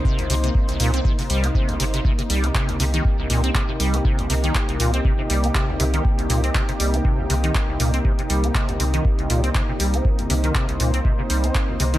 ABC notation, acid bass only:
X:1
M:4/4
L:1/16
Q:"Swing 16ths" 1/4=120
K:Cm
V:1 name="Acid bass" clef=bass
C, C,, C, C, z C,, B,, C C, C, G, C C, C,, C, C, | C, C, G, C C, C,, C, E, z C,, B,, C C, C, G, C | C, C,, C, E, z C,, B,, C C, C, G, C C, C,, C, E, | z C,, B,, C C, C, G, C C, C,, C, E, z C,, B,, C |
C, C, G, C C, C,, C, E, z C,, B,, C C, C, G, C- | C C,, C, E, C, C,, B,, C C, C, G, C2 C,, C, E, |]